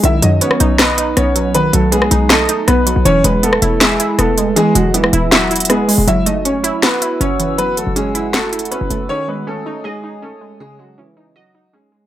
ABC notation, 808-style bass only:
X:1
M:4/4
L:1/16
Q:1/4=159
K:F#dor
V:1 name="808-style bass" clef=bass
B,,,2 F,,2 z2 B,,,6 B,,,4- | B,,,2 B,,,4 B,,,4 z2 B,,,3 B,,, | E,,,2 E,,,4 E,,,4 z2 E,,,4 | z2 E,,,4 D,,,8- D,,, E,,, |
F,,,6- F,,, z4 z F,,,4- | F,,,3 F,,,8- F,,,2 F,,, F,,,2 | z16 | z16 |]